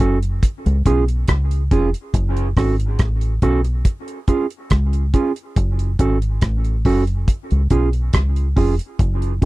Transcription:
0.00 0.40 F#1 medium
0.00 0.17 C#4 medium
0.00 0.18 F#4 medium
0.00 0.18 A4 medium
0.00 kick medium
0.00 closed hi-hat medium
0.23 closed hi-hat medium
0.43 kick loud
0.43 closed hi-hat loud
0.66 0.84 C#2 medium
0.66 closed hi-hat soft
0.86 1.25 B1 medium
0.86 1.03 C#4 medium
0.86 1.03 F4 medium
0.86 1.04 G#4 loud
0.86 kick medium
0.86 closed hi-hat medium
1.08 closed hi-hat soft
1.28 1.68 C#2 medium
1.28 kick loud
1.28 cross-stick loud
1.28 closed hi-hat medium
1.51 closed hi-hat medium
1.71 1.92 F1 medium
1.71 1.89 C#4 medium
1.71 1.89 F4 medium
1.71 1.89 G#4 loud
1.71 kick medium
1.71 closed hi-hat medium
1.94 closed hi-hat medium
2.14 2.54 F#1 loud
2.14 kick loud
2.14 closed hi-hat medium
2.37 closed hi-hat medium
2.57 2.96 G#1 medium
2.57 2.75 C#4 medium
2.57 2.75 F#4 medium
2.57 2.75 A4 medium
2.57 kick medium
2.57 cross-stick medium
2.57 open hi-hat soft
2.80 closed hi-hat medium
2.99 3.39 A1 medium
2.99 kick loud
2.99 cross-stick loud
2.99 closed hi-hat medium
3.21 closed hi-hat medium
3.42 3.82 B1 loud
3.42 3.60 C#4 medium
3.42 3.60 F#4 loud
3.42 3.60 A4 loud
3.42 kick medium
3.42 closed hi-hat medium
3.64 muted clean electric guitar stroke soft
3.64 closed hi-hat medium
3.85 kick loud
3.85 closed hi-hat loud
4.08 closed hi-hat soft
4.28 4.45 C#4 medium
4.28 4.46 F4 medium
4.28 4.46 G#4 medium
4.28 kick medium
4.28 closed hi-hat medium
4.50 closed hi-hat soft
4.70 5.11 C#2 medium
4.70 kick loud
4.70 cross-stick loud
4.70 closed hi-hat medium
4.93 closed hi-hat medium
5.14 5.31 C#4 medium
5.14 5.31 F4 medium
5.14 5.32 G#4 medium
5.14 kick loud
5.14 closed hi-hat medium
5.36 closed hi-hat medium
5.56 5.96 F#1 loud
5.56 kick loud
5.56 closed hi-hat medium
5.79 closed hi-hat soft
5.99 6.39 G#1 medium
5.99 6.17 C#4 medium
5.99 6.17 F#4 medium
5.99 6.18 A4 medium
5.99 kick medium
5.99 closed hi-hat medium
6.22 closed hi-hat medium
6.41 6.82 A1 medium
6.41 kick loud
6.41 cross-stick loud
6.41 closed hi-hat medium
6.64 closed hi-hat medium
6.85 7.25 F#1 medium
6.85 7.03 C#4 medium
6.85 7.03 F#4 loud
6.85 7.03 A4 medium
6.85 kick medium
6.85 open hi-hat medium
7.07 closed hi-hat medium
7.28 kick loud
7.28 closed hi-hat loud
7.51 7.70 C#2 medium
7.51 closed hi-hat soft
7.70 8.10 B1 medium
7.70 7.88 C#4 medium
7.70 7.88 F4 medium
7.70 7.89 G#4 medium
7.70 kick medium
7.70 closed hi-hat medium
7.93 closed hi-hat soft
8.13 8.53 C#2 medium
8.13 kick loud
8.13 cross-stick loud
8.13 closed hi-hat medium
8.36 closed hi-hat medium
8.56 8.78 F1 medium
8.56 8.74 C#4 medium
8.56 8.74 F4 medium
8.56 8.74 G#4 medium
8.56 kick medium
8.56 open hi-hat medium
8.79 closed hi-hat medium
8.99 9.39 F#1 loud
8.99 kick loud
8.99 closed hi-hat medium
9.22 closed hi-hat soft
9.41 9.45 C#4 medium
9.41 9.45 F#4 medium
9.41 kick medium
9.41 closed hi-hat medium

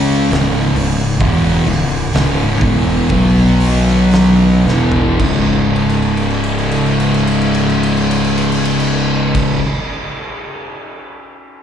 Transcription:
0.00 0.27 C#2 loud
0.00 0.30 C#3 loud
0.00 0.31 G#3 loud
0.00 0.31 C#4 loud
0.31 0.73 C#1 loud
0.31 0.74 C#2 loud
0.31 0.75 G#2 loud
0.31 0.75 C#3 loud
0.31 snare loud
0.31 open hi-hat medium
0.76 1.18 C#1 medium
0.76 1.12 C#2 medium
0.76 1.12 G#2 medium
0.76 open hi-hat medium
1.20 1.64 E1 loud
1.20 1.66 E2 loud
1.20 1.66 B2 loud
1.20 1.66 E3 loud
1.20 kick loud
1.20 open hi-hat medium
1.66 2.11 C#1 medium
1.66 2.05 C#2 medium
1.66 2.05 G#2 medium
1.66 open hi-hat medium
2.13 2.59 C#1 loud
2.13 2.61 C#2 medium
2.13 2.61 G#2 loud
2.13 2.61 C#3 loud
2.13 snare loud
2.13 open hi-hat medium
2.61 3.07 E1 medium
2.61 3.10 E2 medium
2.61 3.10 B2 loud
2.61 3.10 E3 loud
2.61 kick loud
2.61 open hi-hat medium
3.09 4.61 B1 loud
3.09 4.65 B2 medium
3.09 4.65 F#3 medium
3.09 4.65 B3 loud
3.09 kick loud
3.09 open hi-hat medium
3.60 open hi-hat medium
3.88 snare soft
4.11 snare loud
4.11 open hi-hat medium
4.65 5.16 E1 loud
4.65 5.19 E2 loud
4.65 5.19 B2 loud
4.65 5.19 E3 loud
4.65 snare medium
4.92 floor tom medium
5.19 9.53 C#1 loud
5.19 9.57 C#2 loud
5.19 9.58 G#2 loud
5.19 kick loud
5.19 crash medium
5.24 9.59 C#3 loud
5.76 crash medium
5.89 ride medium
6.02 crash medium
6.17 ride medium
6.30 crash medium
6.44 ride medium
6.58 crash medium
6.71 ride medium
6.86 crash medium
7.00 ride medium
7.14 crash medium
7.27 ride medium
7.41 crash medium
7.55 ride medium
7.69 crash medium
7.83 ride medium
7.97 crash medium
8.11 ride medium
8.24 crash medium
8.38 ride medium
8.52 crash medium
8.65 ride medium
8.80 crash medium
9.35 kick loud
9.35 crash loud

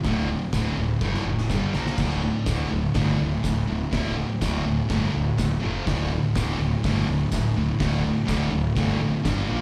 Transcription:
0.04 0.34 D1 loud
0.04 0.28 D2 medium
0.04 0.28 A2 medium
0.04 0.28 D3 loud
0.04 kick loud
0.04 snare loud
0.04 open hi-hat medium
0.29 0.51 D2 medium
0.29 0.51 A2 medium
0.52 0.68 D1 medium
0.52 0.75 D2 medium
0.52 0.76 A2 medium
0.52 0.76 D3 loud
0.52 kick loud
0.52 snare loud
0.52 open hi-hat medium
0.52 tambourine medium
0.77 0.92 D1 medium
0.77 0.99 D2 medium
0.77 0.99 A2 medium
1.01 1.16 G1 medium
1.01 1.24 D2 medium
1.01 1.25 A2 medium
1.01 1.25 D3 medium
1.01 kick loud
1.01 snare medium
1.14 snare medium
1.25 1.40 F1 medium
1.25 1.47 D2 medium
1.25 1.48 A2 medium
1.38 snare medium
1.50 1.65 G1 medium
1.50 1.73 G2 medium
1.50 1.73 D3 loud
1.50 1.73 G3 loud
1.50 kick medium
1.50 snare medium
1.50 tambourine medium
1.74 1.89 A#1 medium
1.74 1.97 A#2 medium
1.74 1.97 F3 loud
1.74 1.98 A#3 loud
1.74 snare loud
1.87 snare medium
1.98 2.28 D1 medium
1.98 2.21 D2 medium
1.98 2.21 A2 medium
1.98 2.22 D3 loud
1.98 kick loud
1.98 snare loud
1.98 crash loud
2.22 2.44 D2 medium
2.22 2.44 A2 medium
2.46 2.61 D1 medium
2.46 2.70 D2 medium
2.46 2.70 A2 medium
2.46 2.70 D3 medium
2.46 kick loud
2.46 snare loud
2.46 open hi-hat medium
2.46 tambourine loud
2.71 2.86 D1 medium
2.71 2.93 D2 medium
2.71 2.93 A2 medium
2.94 3.10 G1 loud
2.94 3.18 D2 medium
2.94 3.18 A2 medium
2.94 3.18 D3 loud
2.94 kick loud
2.94 snare loud
2.94 open hi-hat medium
3.19 3.35 D1 medium
3.19 3.41 D2 medium
3.19 3.41 A2 medium
3.43 3.59 D1 medium
3.43 3.65 D2 medium
3.43 3.65 A2 medium
3.43 kick loud
3.43 snare loud
3.43 open hi-hat medium
3.43 tambourine loud
3.68 3.84 D1 medium
3.68 3.90 D2 medium
3.68 3.90 A2 medium
3.91 4.22 D1 medium
3.91 4.15 D2 medium
3.91 4.15 A2 medium
3.91 4.15 D3 loud
3.91 kick loud
3.91 snare loud
3.91 open hi-hat medium
4.16 4.38 D2 medium
4.16 4.39 A2 medium
4.41 4.56 D1 medium
4.41 4.64 D2 medium
4.41 4.64 A2 medium
4.41 4.64 D3 medium
4.41 kick loud
4.41 snare loud
4.41 open hi-hat medium
4.41 tambourine loud
4.65 4.80 D1 medium
4.65 4.87 D2 medium
4.65 4.87 A2 medium
4.89 5.04 G1 loud
4.89 5.12 D2 medium
4.89 5.12 A2 medium
4.89 5.13 D3 loud
4.89 kick loud
4.89 snare loud
4.89 open hi-hat medium
5.13 5.29 D1 medium
5.13 5.35 D2 medium
5.13 5.35 A2 medium
5.38 5.53 D1 medium
5.38 5.60 D2 medium
5.38 5.60 A2 medium
5.38 kick loud
5.38 snare loud
5.38 open hi-hat medium
5.38 tambourine loud
5.61 5.78 F1 medium
5.61 5.84 F2 medium
5.61 5.85 C3 medium
5.61 5.85 F3 loud
5.86 6.17 D1 loud
5.86 6.09 D2 medium
5.86 6.09 A2 medium
5.86 6.10 D3 medium
5.86 kick loud
5.86 snare loud
5.86 open hi-hat medium
6.11 6.33 D2 medium
6.11 6.33 A2 medium
6.35 6.50 D1 medium
6.35 6.58 D2 medium
6.35 6.58 A2 medium
6.35 6.59 D3 medium
6.35 kick loud
6.35 snare loud
6.35 open hi-hat medium
6.35 tambourine loud
6.59 6.74 D1 medium
6.59 6.81 D2 medium
6.59 6.81 A2 medium
6.84 6.99 G1 loud
6.84 7.06 D2 medium
6.84 7.07 A2 loud
6.84 7.07 D3 medium
6.84 kick loud
6.84 snare loud
6.84 open hi-hat medium
7.07 7.22 D1 medium
7.07 7.30 D2 medium
7.07 7.30 A2 medium
7.32 7.47 D1 medium
7.32 7.53 D2 medium
7.32 7.54 A2 medium
7.32 kick medium
7.32 snare loud
7.32 open hi-hat medium
7.32 tambourine loud
7.55 7.70 D1 medium
7.55 7.78 D2 medium
7.55 7.78 A2 medium
7.79 8.10 D1 medium
7.79 8.02 D2 medium
7.79 8.03 A2 medium
7.79 8.03 D3 loud
7.79 kick loud
7.79 snare loud
7.79 open hi-hat medium
8.04 8.24 D2 medium
8.04 8.25 A2 medium
8.26 8.43 D1 medium
8.26 8.49 D2 medium
8.26 8.50 A2 medium
8.26 8.50 D3 medium
8.26 kick loud
8.26 snare loud
8.26 open hi-hat medium
8.26 tambourine loud
8.50 8.67 D1 medium
8.50 8.73 D2 medium
8.50 8.74 A2 medium
8.76 8.92 G1 medium
8.76 8.99 D2 medium
8.76 8.99 A2 medium
8.76 9.00 D3 loud
8.76 kick loud
8.76 snare loud
8.76 open hi-hat medium
9.01 9.16 A1 medium
9.01 9.23 D2 medium
9.01 9.23 A2 medium
9.24 9.40 G1 medium
9.24 9.47 G2 medium
9.24 9.48 D3 medium
9.24 9.48 G3 loud
9.24 kick loud
9.24 snare loud
9.24 open hi-hat medium
9.24 tambourine medium
9.48 9.61 A#1 medium
9.48 9.61 A#2 medium
9.48 9.61 F3 loud
9.48 9.61 A#3 loud

